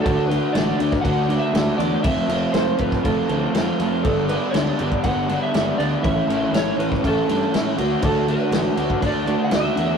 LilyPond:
<<
  \new Staff \with { instrumentName = "Electric slide guitar" } { \time 4/4 \key d \major \tempo 4 = 120 a'8 b'8 d''4 fis''8. e''8. d''8 | e''4 c''8 b'8 a'4 r4 | a'8 b'8 d''4 fis''8. e''8. d''8 | e''4 cis''8 b'8 a'4 r4 |
a'8 b'4. d''8. fis''16 e''4 | }
  \new Staff \with { instrumentName = "Overdriven electric guitar" } { \time 4/4 \key d \major <d a d' fis'>8 <d a d' fis'>8 <d a d' fis'>8 <d a d' fis'>8 <d a d' fis'>8 <d a d' fis'>8 <d a d' fis'>8 <d a d' fis'>8 | <f a c' f'>8 <f a c' f'>8 <f a c' f'>8 <f a c' f'>8 <f a c' f'>8 <f a c' f'>8 <f a c' f'>8 <f a c' f'>8 | <g, d g b d'>8 <g, d g b d'>8 <g, d g b d'>8 <g, d g b d'>8 <g, d g b d'>8 <g, d g b d'>8 <g, d g b d'>8 <g, d g b d'>8 | <a, e a cis' e'>8 <a, e a cis' e'>8 <a, e a cis' e'>8 <a, e a cis' e'>8 <a, e a cis' e'>8 <a, e a cis' e'>8 <a, e a cis' e'>8 <d a d' fis'>8 |
<d a d' fis'>8 <d a d' fis'>8 <d a d' fis'>8 <d a d' fis'>8 <d a d' fis'>8 <d a d' fis'>8 <d a d' fis'>8 <d a d' fis'>8 | }
  \new Staff \with { instrumentName = "Fingered electric bass" } { \clef bass \time 4/4 \key d \major d,4 a,,8 d,8 d,4 d,8 e,8 | f,,8 f,,8 f,,8 f,,8 f,,8 d,8 f,8 f,8 | g,,4 d,8 g,,8 g,,4 g,,8 d,8 | a,,8 a,,8 a,,8 a,,8 a,,8 g,8 a,8 d,8 |
d,4 a,,8 d,8 d,4 d,8 e,8 | }
  \new DrumStaff \with { instrumentName = "Drums" } \drummode { \time 4/4 <cymc bd>8 cymc8 <cymc sn>8 cymc16 <bd sn>16 <cymc bd>8 cymc8 <cymc sn>8 cymc8 | <cymc bd>8 cymc8 <cymc sn>8 <cymc bd>16 <bd sn>16 <cymc bd>8 cymc8 <cymc sn>8 cymc8 | <cymc bd>8 cymc8 <cymc sn>8 cymc16 bd16 <cymc bd>8 cymc8 <cymc sn>8 cymc8 | <cymc bd>8 cymc8 <cymc sn>8 cymc16 <bd sn>16 <cymc bd>8 cymc8 <cymc sn>8 cymc8 |
<cymc bd>8 cymc8 <cymc sn>8 cymc16 bd16 <cymc bd>8 cymc8 <cymc sn>8 cymc8 | }
>>